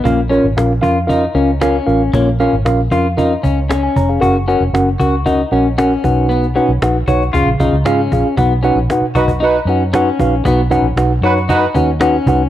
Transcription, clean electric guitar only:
\new Staff \with { instrumentName = "Clean electric guitar" } { \time 4/4 \key b \lydian \tempo 4 = 115 ais8 cis'8 r8 eis'8 dis'8 cis'8 cis'4 | ais8 cis'8 r8 eis'8 dis'8 cis'8 cis'4 | fis'8 cis'8 r8 fis'8 dis'8 cis'8 cis'4 | b8 cis'8 r8 fis'8 eis'8 dis'8 cis'4 |
b8 cis'8 r8 fis'8 dis'8 cis'8 cis'4 | b8 cis'8 r8 fis'8 dis'8 cis'8 cis'4 | }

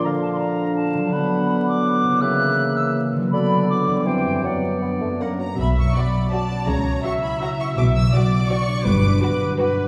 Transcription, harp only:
\new Staff \with { instrumentName = "Harp" } { \time 3/4 \key bes \major \tempo 4 = 164 << { <d bes d' f' d''>2. | \key b \minor <d fis fis' b'>2. | <cis ais e' ais'>2. | <d fis fis' b'>2 <e, g e' c''>4 |
<fis, b d' d''>2 <fis, ais fis' cis''>4~ | <fis, ais fis' cis''>2.~ | <fis, ais fis' cis''>2.~ | <fis, ais fis' cis''>2. |
r2. | } \\ { r2. | r2. | r2. | r2. |
r2. | b,8 fis8 fis'8 b8 cis'8 b8 | cis8 cis'8 fis'8 e'8 fis'8 e'8 | b,8 fis8 fis'8 d'8 e'8 d'8 |
g,8 d8 fis'8 d'8 e'8 d'8 | } >> }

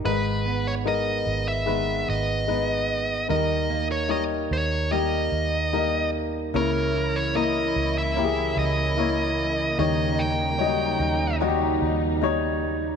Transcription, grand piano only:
<<
  \new Staff \with { instrumentName = "Grand piano" } { \time 4/4 \key gis \minor \tempo 4 = 74 <gis dis' ais' b'>4 <gis dis' ais'>4 <dis gis b'>4 <gis dis' b'>4 | <g dis' ais'>4 <g dis' cis''>4 <g dis' g'>4 <g dis' ais'>4 | <ais e' cis''>4 <ais e' ais'>4 <ais e' g' gis'>4 <ais e' cis''>4 | <g dis' cis''>4 <fis g dis' dis''>4 <g dis' fis' g'>4 <g dis' cis''>4 | }
  \new Staff \with { instrumentName = "Grand piano" } { \clef bass \time 4/4 \key gis \minor gis,4. r2 r8 | dis4. r2 r8 | cis4. r2 r8 | dis4. r2 r8 | }
>>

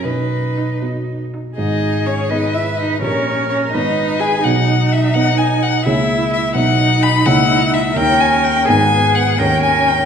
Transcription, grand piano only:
\new Staff \with { instrumentName = "Grand piano" } { \time 6/8 \key b \major \tempo 4. = 84 b,,4. <b fis' dis''>4. | \key gis \minor <gis,, gis,>4. <b gis' dis''>4. | <bes,, bes, bes g' bes'>4. <gis,, gis, b dis' dis''>4. | <b,, b,>4. <b dis' dis''>4. |
<cis, cis ais e' cis''>4. <b,, b, b dis' dis''>4. | <cis, cis ais e' cis''>4. <dis, dis ais dis' cis''>4. | <gis,, gis, b dis' b'>4. <dis, dis cis' dis' ais'>4. | }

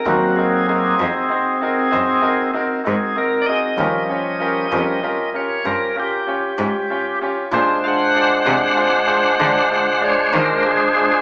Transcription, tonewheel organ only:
<<
  \new Staff \with { instrumentName = "Tonewheel organ" } { \time 12/8 \key aes \major \tempo 4. = 64 ges'8 aes'8 <c' aes'>2. r8 aes'8 bes'8 <d'' ees''>8~ | <d'' ees''>2~ <d'' ees''>8 des''8 bes'8 g'2 r8 | r8 <f'' ges''>2. ges''8 des''8 bes'8 aes'4 | }
  \new Staff \with { instrumentName = "Tonewheel organ" } { \time 12/8 \key aes \major <ges bes c'>4. r1 r8 | <f g des'>4. <f g des'>8 r1 | <aes d' c''>1. | }
>>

